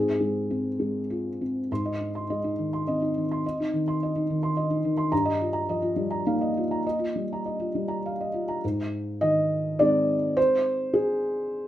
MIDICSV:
0, 0, Header, 1, 2, 480
1, 0, Start_track
1, 0, Tempo, 600601
1, 1355, Time_signature, 3, 2, 24, 8
1, 1825, Tempo, 566572
1, 5185, Tempo, 594059
1, 7105, Tempo, 575264
1, 9650, End_track
2, 0, Start_track
2, 0, Title_t, "Felt piano"
2, 0, Program_c, 0, 0
2, 0, Note_on_c, 0, 44, 52
2, 0, Note_on_c, 0, 60, 36
2, 0, Note_on_c, 0, 68, 69
2, 52, Control_c, 0, 64, 127
2, 163, Note_on_c, 0, 56, 31
2, 404, Note_off_c, 0, 60, 0
2, 404, Note_on_c, 0, 60, 37
2, 544, Note_off_c, 0, 56, 0
2, 635, Note_on_c, 0, 56, 36
2, 785, Note_off_c, 0, 60, 0
2, 880, Note_on_c, 0, 65, 37
2, 1020, Note_off_c, 0, 56, 0
2, 1121, Note_off_c, 0, 68, 0
2, 1129, Note_on_c, 0, 60, 31
2, 1263, Note_off_c, 0, 65, 0
2, 1330, Note_off_c, 0, 44, 0
2, 1362, Note_off_c, 0, 60, 0
2, 1371, Note_on_c, 0, 44, 41
2, 1372, Control_c, 0, 64, 0
2, 1374, Note_on_c, 0, 84, 35
2, 1481, Note_on_c, 0, 75, 31
2, 1524, Control_c, 0, 64, 127
2, 1553, Note_off_c, 0, 84, 0
2, 1604, Note_on_c, 0, 63, 30
2, 1665, Note_off_c, 0, 75, 0
2, 1719, Note_on_c, 0, 84, 31
2, 1785, Note_off_c, 0, 63, 0
2, 1839, Note_on_c, 0, 75, 32
2, 1840, Note_on_c, 0, 56, 27
2, 1906, Note_off_c, 0, 84, 0
2, 1957, Note_on_c, 0, 63, 35
2, 2030, Note_off_c, 0, 75, 0
2, 2080, Note_on_c, 0, 51, 33
2, 2149, Note_off_c, 0, 63, 0
2, 2205, Note_on_c, 0, 84, 31
2, 2271, Note_off_c, 0, 51, 0
2, 2325, Note_on_c, 0, 75, 37
2, 2330, Note_on_c, 0, 60, 29
2, 2332, Note_on_c, 0, 63, 32
2, 2393, Note_off_c, 0, 84, 0
2, 2434, Note_off_c, 0, 63, 0
2, 2447, Note_on_c, 0, 63, 33
2, 2514, Note_off_c, 0, 75, 0
2, 2582, Note_on_c, 0, 51, 32
2, 2613, Note_off_c, 0, 56, 0
2, 2636, Note_off_c, 0, 63, 0
2, 2698, Note_on_c, 0, 84, 37
2, 2763, Note_off_c, 0, 51, 0
2, 2773, Note_off_c, 0, 44, 0
2, 2814, Control_c, 0, 64, 0
2, 2823, Note_on_c, 0, 75, 39
2, 2880, Note_off_c, 0, 84, 0
2, 2940, Control_c, 0, 64, 127
2, 2940, Note_on_c, 0, 63, 37
2, 3001, Note_off_c, 0, 75, 0
2, 3053, Note_on_c, 0, 51, 36
2, 3119, Note_off_c, 0, 63, 0
2, 3175, Note_on_c, 0, 84, 38
2, 3234, Note_off_c, 0, 51, 0
2, 3302, Note_on_c, 0, 75, 39
2, 3355, Note_off_c, 0, 84, 0
2, 3411, Note_on_c, 0, 63, 42
2, 3478, Note_off_c, 0, 75, 0
2, 3534, Note_on_c, 0, 51, 45
2, 3592, Note_off_c, 0, 63, 0
2, 3643, Note_on_c, 0, 84, 40
2, 3713, Note_off_c, 0, 51, 0
2, 3760, Note_on_c, 0, 75, 43
2, 3827, Note_off_c, 0, 84, 0
2, 3875, Note_on_c, 0, 63, 40
2, 3945, Note_off_c, 0, 75, 0
2, 3996, Note_on_c, 0, 51, 47
2, 4062, Note_off_c, 0, 63, 0
2, 4105, Note_on_c, 0, 84, 47
2, 4181, Note_off_c, 0, 51, 0
2, 4198, Note_off_c, 0, 60, 0
2, 4224, Note_off_c, 0, 84, 0
2, 4227, Note_on_c, 0, 82, 57
2, 4228, Note_on_c, 0, 43, 61
2, 4240, Control_c, 0, 64, 0
2, 4341, Note_on_c, 0, 75, 51
2, 4364, Control_c, 0, 64, 127
2, 4416, Note_off_c, 0, 82, 0
2, 4472, Note_on_c, 0, 65, 38
2, 4533, Note_off_c, 0, 75, 0
2, 4575, Note_on_c, 0, 82, 42
2, 4659, Note_off_c, 0, 65, 0
2, 4711, Note_on_c, 0, 53, 46
2, 4713, Note_on_c, 0, 75, 52
2, 4770, Note_off_c, 0, 82, 0
2, 4822, Note_on_c, 0, 65, 45
2, 4900, Note_off_c, 0, 75, 0
2, 4941, Note_on_c, 0, 55, 43
2, 5015, Note_off_c, 0, 65, 0
2, 5063, Note_on_c, 0, 82, 43
2, 5136, Note_off_c, 0, 55, 0
2, 5197, Note_on_c, 0, 63, 40
2, 5198, Note_on_c, 0, 58, 39
2, 5199, Note_on_c, 0, 77, 45
2, 5256, Note_off_c, 0, 82, 0
2, 5316, Note_on_c, 0, 75, 40
2, 5381, Note_off_c, 0, 77, 0
2, 5445, Note_on_c, 0, 65, 36
2, 5473, Note_off_c, 0, 53, 0
2, 5500, Note_off_c, 0, 75, 0
2, 5558, Note_on_c, 0, 82, 39
2, 5625, Note_off_c, 0, 65, 0
2, 5631, Note_off_c, 0, 43, 0
2, 5675, Control_c, 0, 64, 0
2, 5683, Note_on_c, 0, 75, 47
2, 5743, Note_off_c, 0, 82, 0
2, 5783, Note_on_c, 0, 65, 36
2, 5812, Control_c, 0, 64, 127
2, 5866, Note_off_c, 0, 75, 0
2, 5917, Note_on_c, 0, 55, 31
2, 5977, Note_off_c, 0, 65, 0
2, 6055, Note_on_c, 0, 82, 30
2, 6104, Note_off_c, 0, 55, 0
2, 6160, Note_on_c, 0, 75, 32
2, 6233, Note_off_c, 0, 82, 0
2, 6273, Note_on_c, 0, 65, 36
2, 6346, Note_off_c, 0, 75, 0
2, 6396, Note_on_c, 0, 55, 35
2, 6462, Note_off_c, 0, 65, 0
2, 6504, Note_on_c, 0, 82, 35
2, 6584, Note_off_c, 0, 55, 0
2, 6646, Note_on_c, 0, 77, 34
2, 6697, Note_off_c, 0, 82, 0
2, 6766, Note_on_c, 0, 75, 28
2, 6828, Note_off_c, 0, 77, 0
2, 6872, Note_on_c, 0, 65, 30
2, 6949, Note_off_c, 0, 75, 0
2, 6990, Note_on_c, 0, 82, 34
2, 7061, Note_off_c, 0, 65, 0
2, 7079, Note_off_c, 0, 58, 0
2, 7079, Note_off_c, 0, 63, 0
2, 7107, Note_off_c, 0, 82, 0
2, 7119, Control_c, 0, 64, 0
2, 7120, Note_on_c, 0, 44, 53
2, 7236, Control_c, 0, 64, 127
2, 7593, Note_on_c, 0, 75, 81
2, 7599, Note_on_c, 0, 51, 40
2, 8077, Note_off_c, 0, 75, 0
2, 8078, Note_on_c, 0, 74, 85
2, 8089, Note_on_c, 0, 56, 39
2, 8091, Note_on_c, 0, 60, 41
2, 8093, Note_on_c, 0, 63, 43
2, 8369, Note_off_c, 0, 51, 0
2, 8529, Note_off_c, 0, 44, 0
2, 8557, Note_off_c, 0, 74, 0
2, 8558, Note_on_c, 0, 72, 92
2, 8571, Control_c, 0, 64, 0
2, 8693, Control_c, 0, 64, 127
2, 9032, Note_off_c, 0, 72, 0
2, 9032, Note_on_c, 0, 68, 67
2, 9650, Note_off_c, 0, 56, 0
2, 9650, Note_off_c, 0, 60, 0
2, 9650, Note_off_c, 0, 63, 0
2, 9650, Note_off_c, 0, 68, 0
2, 9650, End_track
0, 0, End_of_file